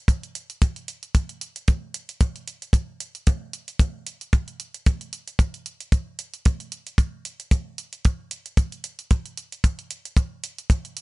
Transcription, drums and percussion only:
0.08 kick loud
0.08 closed hi-hat medium
0.23 closed hi-hat soft
0.35 closed hi-hat medium
0.50 closed hi-hat soft
0.62 kick loud
0.62 closed hi-hat medium
0.76 closed hi-hat soft
0.88 closed hi-hat medium
1.03 closed hi-hat soft
1.15 kick loud
1.15 closed hi-hat medium
1.29 closed hi-hat soft
1.41 closed hi-hat medium
1.56 closed hi-hat soft
1.68 kick loud
1.68 closed hi-hat medium
1.94 closed hi-hat medium
2.09 closed hi-hat soft
2.21 kick loud
2.21 closed hi-hat medium
2.36 closed hi-hat soft
2.48 closed hi-hat medium
2.62 closed hi-hat soft
2.73 kick loud
2.73 closed hi-hat medium
3.00 closed hi-hat medium
3.15 closed hi-hat soft
3.27 kick loud
3.27 closed hi-hat medium
3.53 closed hi-hat medium
3.68 closed hi-hat soft
3.79 kick loud
3.79 closed hi-hat medium
4.07 closed hi-hat medium
4.21 closed hi-hat soft
4.33 kick loud
4.33 closed hi-hat medium
4.48 closed hi-hat soft
4.60 closed hi-hat medium
4.74 closed hi-hat soft
4.86 kick loud
4.86 closed hi-hat medium
5.01 closed hi-hat soft
5.13 closed hi-hat medium
5.28 closed hi-hat soft
5.39 kick loud
5.39 closed hi-hat medium
5.54 closed hi-hat soft
5.66 closed hi-hat medium
5.80 closed hi-hat soft
5.92 kick loud
5.92 closed hi-hat medium
6.19 closed hi-hat medium
6.34 closed hi-hat soft
6.45 kick loud
6.45 closed hi-hat medium
6.60 closed hi-hat soft
6.72 closed hi-hat medium
6.87 closed hi-hat soft
6.98 kick loud
6.98 closed hi-hat medium
7.25 closed hi-hat medium
7.40 closed hi-hat soft
7.51 kick loud
7.51 closed hi-hat medium
7.78 closed hi-hat medium
7.93 closed hi-hat soft
8.05 kick loud
8.05 closed hi-hat medium
8.31 closed hi-hat medium
8.46 closed hi-hat soft
8.57 kick loud
8.57 closed hi-hat medium
8.72 closed hi-hat soft
8.84 closed hi-hat medium
8.99 closed hi-hat soft
9.11 kick loud
9.11 closed hi-hat medium
9.26 closed hi-hat soft
9.37 closed hi-hat medium
9.52 closed hi-hat soft
9.64 kick loud
9.64 closed hi-hat medium
9.79 closed hi-hat soft
9.91 closed hi-hat medium
10.05 closed hi-hat soft
10.17 kick loud
10.17 closed hi-hat medium
10.44 closed hi-hat medium
10.58 closed hi-hat soft
10.70 kick loud
10.70 closed hi-hat medium
10.85 closed hi-hat soft
10.97 closed hi-hat medium

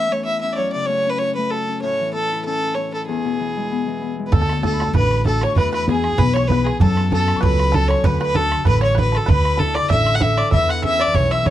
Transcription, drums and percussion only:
4.33 bodhran medium
4.49 bodhran medium
4.64 bodhran medium
4.80 bodhran medium
4.87 bodhran soft
4.94 bodhran medium
5.11 bodhran medium
5.25 bodhran medium
5.41 bodhran medium
5.56 bodhran medium
5.74 bodhran medium
5.88 bodhran medium
6.04 bodhran medium
6.12 bodhran soft
6.19 bodhran medium
6.36 bodhran medium
6.50 bodhran medium
6.66 bodhran medium
6.80 bodhran medium
6.97 bodhran medium
7.12 bodhran medium
7.28 bodhran medium
7.36 bodhran soft
7.43 bodhran medium
7.60 bodhran medium
7.74 bodhran medium
7.91 bodhran medium
8.04 bodhran medium
8.21 bodhran medium
8.35 bodhran medium
8.52 bodhran medium
8.59 bodhran soft
8.65 bodhran medium
8.83 bodhran medium
8.98 bodhran medium
9.15 bodhran medium
9.28 bodhran loud
9.45 bodhran medium
9.60 bodhran medium
9.77 bodhran medium
9.83 bodhran soft
9.90 bodhran medium
10.06 bodhran medium
10.21 bodhran loud
10.38 bodhran medium
10.52 bodhran medium
10.70 bodhran medium
10.84 bodhran medium
11.01 bodhran medium
11.07 bodhran soft
11.14 bodhran medium
11.31 bodhran medium
11.46 bodhran medium

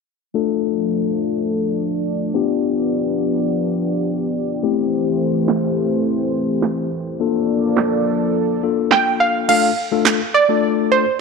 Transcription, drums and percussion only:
5.48 snare medium
5.48 clap loud
6.62 snare medium
6.62 clap loud
7.77 snare medium
7.77 clap loud
8.91 snare medium
8.91 clap loud
9.49 crash medium
10.05 snare medium
10.05 clap loud

